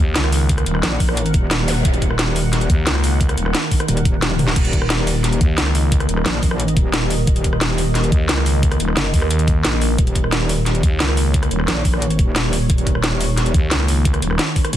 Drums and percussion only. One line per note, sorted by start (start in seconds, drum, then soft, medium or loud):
0.16 snare loud
0.16 closed hi-hat medium
0.24 cross-stick soft
0.32 open hi-hat medium
0.49 kick loud
0.49 closed hi-hat medium
0.58 cross-stick medium
0.58 closed hi-hat soft
0.66 closed hi-hat medium
0.75 cross-stick soft
0.83 snare loud
0.83 closed hi-hat medium
1.00 kick medium
1.00 open hi-hat medium
1.09 cross-stick medium
1.17 closed hi-hat medium
1.26 closed hi-hat soft
1.34 kick loud
1.34 closed hi-hat medium
1.51 snare loud
1.51 closed hi-hat loud
1.68 open hi-hat medium
1.85 kick loud
1.85 closed hi-hat medium
1.94 closed hi-hat soft
2.02 kick medium
2.02 closed hi-hat medium
2.11 cross-stick soft
2.19 snare loud
2.19 closed hi-hat loud
2.36 open hi-hat medium
2.53 snare soft
2.53 closed hi-hat loud
2.61 closed hi-hat soft
2.70 kick loud
2.70 closed hi-hat medium
2.87 snare loud
2.87 closed hi-hat loud
2.95 cross-stick soft
3.04 open hi-hat medium
3.21 kick loud
3.21 closed hi-hat loud
3.29 cross-stick medium
3.29 closed hi-hat soft
3.38 closed hi-hat medium
3.46 cross-stick soft
3.55 snare loud
3.55 closed hi-hat loud
3.71 kick medium
3.71 open hi-hat medium
3.80 cross-stick medium
3.80 closed hi-hat soft
3.88 closed hi-hat loud
3.97 closed hi-hat soft
4.05 kick loud
4.05 closed hi-hat medium
4.22 snare loud
4.22 closed hi-hat loud
4.31 high tom medium
4.39 open hi-hat medium
4.39 mid tom medium
4.48 snare medium
4.56 kick loud
4.56 closed hi-hat loud
4.56 crash medium
4.65 closed hi-hat soft
4.73 kick medium
4.73 closed hi-hat medium
4.82 cross-stick soft
4.90 snare loud
4.90 closed hi-hat loud
5.07 open hi-hat medium
5.24 snare soft
5.24 closed hi-hat loud
5.33 closed hi-hat soft
5.41 kick loud
5.41 closed hi-hat medium
5.58 snare loud
5.58 closed hi-hat loud
5.66 cross-stick medium
5.75 open hi-hat medium
5.92 kick loud
5.92 closed hi-hat loud
6.00 cross-stick medium
6.00 closed hi-hat soft
6.09 closed hi-hat medium
6.17 cross-stick medium
6.26 snare loud
6.26 closed hi-hat medium
6.43 kick medium
6.43 open hi-hat medium
6.51 cross-stick medium
6.60 closed hi-hat medium
6.68 closed hi-hat soft
6.77 kick loud
6.77 closed hi-hat medium
6.94 snare loud
6.94 closed hi-hat loud
7.10 open hi-hat medium
7.27 kick loud
7.27 closed hi-hat medium
7.36 closed hi-hat soft
7.44 kick medium
7.44 closed hi-hat medium
7.53 cross-stick medium
7.61 snare loud
7.61 closed hi-hat medium
7.78 open hi-hat medium
7.95 snare soft
7.95 closed hi-hat medium
8.04 closed hi-hat soft
8.12 kick loud
8.12 closed hi-hat medium
8.29 snare loud
8.29 closed hi-hat loud
8.38 cross-stick medium
8.46 open hi-hat medium
8.63 kick loud
8.63 closed hi-hat medium
8.72 cross-stick medium
8.72 closed hi-hat soft
8.80 closed hi-hat medium
8.88 cross-stick soft
8.97 snare loud
8.97 closed hi-hat medium
9.14 kick medium
9.14 open hi-hat medium
9.22 cross-stick medium
9.31 closed hi-hat medium
9.39 closed hi-hat soft
9.48 kick loud
9.48 closed hi-hat medium
9.65 snare loud
9.65 closed hi-hat medium
9.82 open hi-hat medium
9.98 kick loud
9.98 closed hi-hat medium
10.07 closed hi-hat soft
10.15 kick medium
10.15 closed hi-hat medium
10.24 cross-stick soft
10.32 snare loud
10.32 closed hi-hat medium
10.49 open hi-hat medium
10.66 snare soft
10.66 closed hi-hat medium
10.75 closed hi-hat soft
10.83 kick loud
10.83 closed hi-hat medium
11.00 snare loud
11.00 closed hi-hat medium
11.09 cross-stick soft
11.17 open hi-hat medium
11.34 kick loud
11.34 closed hi-hat medium
11.43 cross-stick medium
11.43 closed hi-hat soft
11.51 closed hi-hat medium
11.60 cross-stick soft
11.68 snare loud
11.68 closed hi-hat medium
11.85 kick medium
11.85 open hi-hat medium
11.94 cross-stick medium
12.02 closed hi-hat medium
12.10 closed hi-hat soft
12.19 kick loud
12.19 closed hi-hat medium
12.36 snare loud
12.36 closed hi-hat loud
12.53 open hi-hat medium
12.70 kick loud
12.70 closed hi-hat medium
12.78 closed hi-hat soft
12.87 kick medium
12.87 closed hi-hat medium
12.95 cross-stick soft
13.04 snare loud
13.04 closed hi-hat loud
13.21 open hi-hat medium
13.38 snare soft
13.38 closed hi-hat medium
13.46 closed hi-hat soft
13.54 kick loud
13.54 closed hi-hat medium
13.71 snare loud
13.71 closed hi-hat loud
13.80 cross-stick soft
13.88 open hi-hat medium
14.05 kick loud
14.05 closed hi-hat loud
14.14 cross-stick medium
14.14 closed hi-hat soft
14.22 closed hi-hat medium
14.31 cross-stick soft
14.39 snare loud
14.39 closed hi-hat loud
14.56 kick medium
14.56 open hi-hat medium
14.65 cross-stick medium
14.65 closed hi-hat soft
14.73 closed hi-hat loud